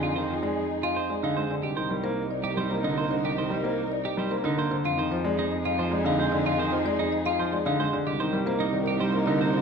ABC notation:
X:1
M:3/4
L:1/16
Q:1/4=112
K:Cm
V:1 name="Marimba"
f z2 d z e f z d f z d | e z B c z d e z c e z c | e z B c z d e z c e z c | f z c d z e f z d f z d |
f z c d z e f z d f z d | e z B c z d e z c e z c |]
V:2 name="Clean electric guitar"
F c z4 F c z E c z | G c z4 G c z E c z | G c z4 G c z E c z | F c z2 E z F c z E c z |
F c z2 E z F c z E c z | G c z2 E z G c z E c z |]
V:3 name="String section"
[EA]8- [EA]3 z | [EB]12- | [EB]8- [EB]3 z | [EA]12- |
[EA]8- [EA]3 z | [EB]12 |]
V:4 name="French horn"
E8- E3 z | E12- | E8- E3 z | E12- |
E8- E3 z | E12 |]
V:5 name="Grand piano" clef=bass
z E, F, A, z4 A, D, A, D, | z E, G, B, z3 G, B, D, B, D, | z E, G, B, z3 G, B, D, B, D, | z E, F, A, z3 F, A, D, A, D, |
z E, F, A, z3 F, A, D, A, D, | z E, G, B, z E, z G, B, D, B, D, |]
V:6 name="Cello" clef=bass
F,,12 | C,,12- | C,,12 | F,,12- |
F,,12 | C,,12 |]